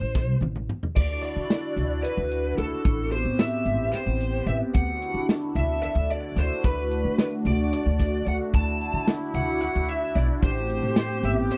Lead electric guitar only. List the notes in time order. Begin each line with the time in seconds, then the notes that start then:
Already playing: C5
0.96 D5
1.23 D5
2.03 B4
2.58 A4
3.12 C5
3.39 E5
3.93 C5
4.47 E5
4.74 F#5
5.56 E5
5.83 E5
6.11 D5
6.38 C5
6.65 B4
7.19 B4
7.47 D5
7.74 D5
8.28 F#5
8.55 A5
9.35 F#5
9.62 F#5
9.89 E5
10.16 D5
10.44 C5
10.97 C5
11.25 E5
11.52 C5